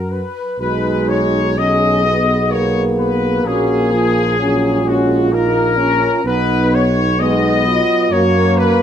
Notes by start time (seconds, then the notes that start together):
Already playing: F#2 F#4 A#4
0.10 B4
0.59 B1 G#3 D#4 F#4 B4
1.09 C#5
1.57 F#3 C#4 G#4 D#5
2.05 B3
2.51 A#3 C#5
2.98 B4
3.44 A#1 C#4 F#4 G#4
3.92 F3 F4
4.38 F#3 C#4 F4
4.86 G#3 C#4 F#4
5.31 A#3 D#4 A#4
5.78 C#4
6.24 B1 B3 D#4 B4
6.74 C#5
7.19 G#3 B3 D#4 D#5
7.66 F#3 F4
8.10 F#2 A#3 F#4 C#5
8.56 B4